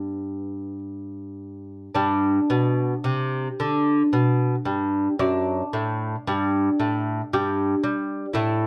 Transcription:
0.00 1.88 G2 soft
0.00 1.89 G3 soft
0.00 0.79 B3 medium
1.95 2.38 G2 medium
1.95 5.13 D4 medium
2.50 2.93 B2 medium
3.04 3.47 C3 medium
3.60 4.02 D3 medium
4.13 4.54 B2 medium
4.65 5.07 G2 medium
5.19 5.61 F#2 medium
5.19 7.27 D4 soft
5.73 6.15 A2 medium
6.27 6.68 G2 medium
6.80 7.21 A2 medium
7.33 7.74 G2 medium
7.33 8.32 G4 soft
7.83 8.25 G3 medium
8.33 8.67 A2 medium
8.33 8.67 E4 medium

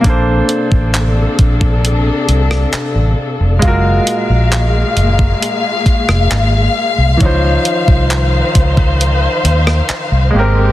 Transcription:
0.01 0.40 A#1 loud
0.01 3.59 C3 medium
0.01 3.57 A#3 medium
0.01 3.58 D4 medium
0.01 3.59 D4 medium
0.01 3.59 A4 medium
0.01 kick loud
0.01 closed hi-hat medium
0.07 3.60 A4 medium
0.07 3.61 C5 medium
0.49 closed hi-hat medium
0.72 1.25 A1 medium
0.72 kick loud
0.94 clap loud
0.94 closed hi-hat medium
1.39 2.10 A#1 medium
1.39 kick loud
1.39 closed hi-hat medium
1.61 kick medium
1.85 closed hi-hat medium
2.28 2.64 C2 loud
2.28 closed hi-hat medium
2.51 cross-stick medium
2.73 muted fingered electric bass stroke soft
2.73 clap loud
2.73 closed hi-hat medium
2.95 3.13 A1 medium
3.40 3.58 F1 medium
3.59 3.98 F#1 loud
3.59 7.17 A#2 medium
3.59 7.15 G#3 medium
3.59 7.17 G#3 medium
3.59 7.16 F4 medium
3.59 10.30 F5 medium
3.59 kick loud
3.59 closed hi-hat medium
3.65 7.18 F#4 medium
3.65 7.19 A#4 medium
4.07 closed hi-hat medium
4.30 4.83 A#1 medium
4.52 clap loud
4.52 closed hi-hat medium
4.97 5.32 F#1 medium
4.97 closed hi-hat medium
5.19 kick medium
5.42 closed hi-hat medium
5.86 muted fingered electric bass stroke soft
5.86 kick medium
5.86 closed hi-hat medium
6.09 6.26 F1 medium
6.09 cross-stick medium
6.31 6.66 G#1 medium
6.31 clap loud
6.31 closed hi-hat medium
6.98 7.16 C2 medium
7.17 7.56 C#2 loud
7.17 10.31 D#3 medium
7.17 7.25 E3 medium
7.17 10.30 C#4 medium
7.17 10.31 C5 medium
7.17 kick loud
7.17 closed hi-hat medium
7.23 10.32 F3 medium
7.23 10.31 D#4 medium
7.23 10.33 C5 medium
7.65 closed hi-hat medium
7.88 8.41 C2 medium
7.88 kick loud
8.11 clap loud
8.11 closed hi-hat medium
8.55 9.26 C#2 medium
8.55 kick loud
8.55 closed hi-hat medium
8.77 kick medium
9.01 closed hi-hat medium
9.44 9.80 D#2 medium
9.44 closed hi-hat medium
9.67 cross-stick medium
9.89 muted fingered electric bass stroke soft
9.89 clap loud
9.89 closed hi-hat medium
10.12 10.29 C2 medium
10.30 10.72 G#1 loud
10.30 10.72 C3 medium
10.30 10.72 G#3 medium
10.30 10.40 A#3 medium
10.30 10.72 A#3 medium
10.30 10.72 G4 medium
10.36 10.72 C4 medium
10.36 10.72 G4 medium
10.36 10.72 A#4 medium

